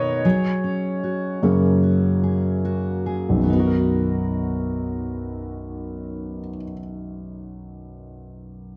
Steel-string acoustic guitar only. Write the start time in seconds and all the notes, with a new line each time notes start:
Already playing: B2 B3 D#4 A#4
0.25 F#3 G#4
0.64 C#4
1.03 F#4
1.43 C#4
1.83 F#4
2.23 G#4
2.65 F#4
3.06 G#4
3.43 B3
3.50 D#4
3.55 F#4
3.60 A#4